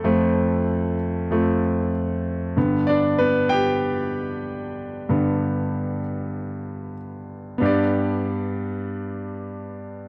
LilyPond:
<<
  \new Staff \with { instrumentName = "Grand piano" } { \time 4/4 \key g \mixolydian \tempo 4 = 95 <a a'>2. r4 | r8 <d' d''>8 <b b'>8 <g' g''>2~ <g' g''>8~ | <g' g''>2. r4 | <b d' g' d''>1 | }
  \new Staff \with { instrumentName = "Grand piano" } { \clef bass \time 4/4 \key g \mixolydian <f, f a>4. r8 <f, f a>8 r4. | <g, d b>8 r2. r8 | <g, d b>4. r2 r8 | g,1 | }
>>